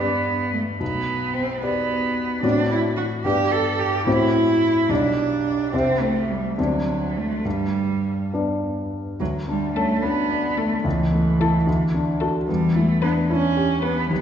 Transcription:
0.00 0.83 G2 soft
0.00 0.53 B3 soft
0.00 0.76 B3 soft
0.00 0.77 G4 soft
0.00 0.77 D5 soft
0.53 0.61 A3 soft
0.80 1.59 B1 soft
0.80 1.35 B3 soft
1.33 1.61 C4 soft
1.62 2.42 B3 soft
1.62 2.40 B3 soft
1.62 2.40 G4 soft
1.62 2.40 D5 soft
2.43 3.22 A2 soft
2.43 3.21 C4 soft
2.43 2.70 D4 soft
2.43 3.21 F#4 soft
2.43 3.21 D5 soft
2.71 2.79 E4 soft
2.97 3.05 F#4 soft
3.25 4.04 G2 soft
3.25 4.03 B3 soft
3.25 3.53 G4 medium
3.25 4.03 G4 soft
3.25 4.03 D5 soft
3.52 3.81 A4 soft
3.80 4.07 G4 medium
4.06 4.87 A2 soft
4.06 4.85 C4 soft
4.06 4.92 E4 medium
4.06 4.86 F#4 soft
4.06 4.86 C5 soft
4.89 5.70 B1 soft
4.89 5.69 G3 soft
4.89 5.74 D4 soft
4.89 5.69 G4 soft
4.89 5.69 D5 soft
5.73 6.56 C2 soft
5.73 6.54 C4 soft
5.73 6.03 C4 medium
5.73 6.54 G4 soft
5.73 6.55 E5 soft
6.01 6.32 A3 soft
6.30 6.58 G3 soft
6.58 7.42 D2 soft
6.58 7.19 F#3 soft
6.58 7.41 C4 soft
6.58 7.41 D4 soft
6.58 7.42 D5 soft
7.17 7.47 A3 soft
7.45 8.30 G2 soft
7.45 8.33 G3 soft
8.33 9.16 B3 soft
8.33 9.16 D4 soft
8.33 9.17 D5 soft
9.20 10.81 D2 soft
9.20 9.28 F#3 soft
9.48 9.75 G3 soft
9.48 9.92 D4 soft
9.76 10.04 A3 soft
9.76 10.03 C#4 soft
9.76 9.96 A4 soft
10.02 10.59 B3 soft
10.02 10.47 D4 soft
10.31 10.74 D5 soft
10.57 10.85 A3 soft
10.57 10.78 A4 soft
10.84 11.64 C#2 soft
10.84 12.19 E3 soft
11.12 11.56 A3 soft
11.40 11.64 E4 soft
11.40 11.65 A4 soft
11.40 11.61 A4 soft
11.66 12.46 D2 soft
11.94 12.38 D4 soft
12.20 12.46 F#4 soft
12.20 12.41 A4 soft
12.20 12.46 A4 soft
12.48 14.06 E2 soft
12.48 12.78 G3 medium
12.75 13.02 A3 medium
12.75 13.19 E4 soft
13.02 13.10 B3 medium
13.02 13.30 D4 soft
13.02 13.22 B4 soft
13.30 13.83 C#4 medium
13.30 13.73 E4 soft
13.57 14.00 G4 soft
13.82 14.10 B3 soft
13.82 14.10 B3 medium
13.82 14.03 B4 soft
14.10 14.21 D#2 soft
14.10 14.21 F#3 medium

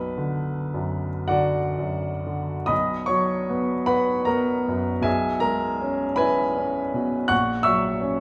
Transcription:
0.00 2.67 B1 soft
0.00 1.28 B4 soft
0.18 1.08 D3 soft
0.74 1.59 F#2 soft
1.28 2.08 D3 soft
1.28 2.66 F#4 soft
1.28 2.66 D5 soft
1.28 2.70 F#5 medium
1.79 2.54 F#2 soft
2.27 2.70 D3 soft
2.66 5.00 B1 soft
2.66 3.06 D#5 soft
2.66 3.06 B5 soft
2.66 3.08 D#6 medium
3.06 3.74 F#3 soft
3.06 3.85 C#5 soft
3.06 3.88 C#6 medium
3.50 4.14 B3 soft
3.86 4.52 F#4 soft
3.86 4.25 B4 soft
3.86 4.25 F#5 soft
3.86 4.28 B5 medium
4.25 4.90 B3 soft
4.25 5.01 A#4 soft
4.25 5.04 A#5 medium
4.68 5.06 F#2 soft
5.02 7.25 B1 soft
5.02 5.40 G#4 soft
5.02 5.40 E5 soft
5.02 5.42 G#5 medium
5.40 6.04 G#3 soft
5.40 6.14 A#4 soft
5.40 6.18 A#5 medium
5.82 6.42 C#4 soft
6.16 6.79 E4 soft
6.16 7.26 B4 soft
6.16 7.26 G#5 medium
6.16 7.29 B5 medium
6.58 7.17 C#4 soft
6.94 7.31 B2 soft
7.28 8.20 A#1 soft
7.28 7.63 F#5 soft
7.28 7.63 C#6 medium
7.28 7.65 F#6 medium
7.63 8.20 F#3 soft
7.63 8.20 E5 medium
7.63 8.20 C#6 medium
7.63 8.20 E6 medium
8.01 8.20 C#4 soft

